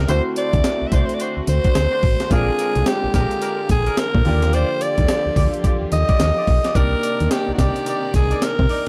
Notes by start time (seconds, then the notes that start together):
0.08 D2 D3 A3 C4 D4 E4 F#4 C5, closed hi-hat, tambourine
0.36 D4 F#4 C5 D5, closed hi-hat, tambourine
0.53 D2, kick, closed hi-hat
0.64 snare, closed hi-hat, tambourine
0.82 C2
0.87 E5
0.92 C2 D4 F#4 C5 D5, kick, closed hi-hat, tambourine
1.06 C5, closed hi-hat
1.15 D5
1.19 D4 F#4 C5, closed hi-hat, tambourine
1.37 D2
1.47 D2 C5, closed hi-hat, tambourine
1.64 D4 F#4 C5, kick, closed hi-hat
1.75 D2, snare, closed hi-hat, tambourine
1.92 D4 F#4 C5
2.03 A1, kick, open hi-hat
2.20 D4 F#4 C5, snare, closed hi-hat
2.30 A#1 D3 G#3 A#3 C4 D4 F4 G#4 A#4, kick, closed hi-hat, tambourine
2.59 D4 G#4 A#4, closed hi-hat, tambourine
2.75 C2, closed hi-hat
2.86 G4, snare, closed hi-hat, tambourine
3.04 A#1
3.14 A#1 D4 G4 G#4 A#4, kick, snare, closed hi-hat, tambourine
3.31 closed hi-hat
3.42 D4 G#4 A#4, closed hi-hat, tambourine
3.69 A#1 G#4, kick, closed hi-hat, tambourine
3.86 D4 G#4 A#4, closed hi-hat
3.97 A#4, snare, closed hi-hat, tambourine
4.15 A#2, kick
4.24 D#2 D3 F3 A#3 F4 G4 D5, open hi-hat
4.42 snare, closed hi-hat
4.53 F4 G4 C5 D5, closed hi-hat, tambourine
4.80 F4 G4 D5, closed hi-hat, tambourine
4.98 D#2, kick, closed hi-hat
5.08 snare, closed hi-hat, tambourine
5.26 D2
5.36 D2 F4 G4 D5, kick, open hi-hat, tambourine
5.54 closed hi-hat
5.64 F4 G4 D5, kick, closed hi-hat, tambourine
5.82 D#2
5.92 D#2 D#5, closed hi-hat, tambourine
6.08 F4 G4 D5, kick, closed hi-hat
6.20 D#2, snare, closed hi-hat, tambourine
6.36 F4 G4 D5
6.47 B1, kick, open hi-hat
6.64 F4 G4 D5, snare, closed hi-hat
6.74 C2 C3 D#3 A#3 D4 D#4 G4 A#4 D5, kick, closed hi-hat, tambourine
7.03 D#4 A#4 D5, closed hi-hat, tambourine
7.20 D#2, closed hi-hat
7.31 G4, snare, closed hi-hat, tambourine
7.49 C2
7.54 D#4 F#4
7.58 C2 G4 A#4 D5, kick, snare, closed hi-hat, tambourine
7.76 closed hi-hat
7.86 D#4 A#4 D5, closed hi-hat, tambourine
8.14 C2 G#4, kick, closed hi-hat, tambourine
8.31 D#4 A#4 D5, closed hi-hat
8.42 A#4, snare, closed hi-hat, tambourine
8.59 C3, kick
8.69 D#4 A#4 D5, open hi-hat